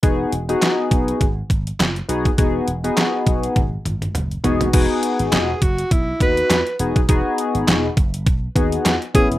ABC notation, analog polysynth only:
X:1
M:4/4
L:1/16
Q:"Swing 16ths" 1/4=102
K:E
V:1 name="Analog polysynth"
[B,DFG]2 z [B,DFG]4- [B,DFG] z6 [B,DFG] z | [B,DFG]2 z [B,DFG]4- [B,DFG] z6 [B,DFG]2 | [B,DFG]4- [B,DFG] z4 z [B,DFB]3 z [B,DFG] z | [B,DFG]4- [B,DFG] z4 z [B,DFG]3 z [B,CEG]2 |]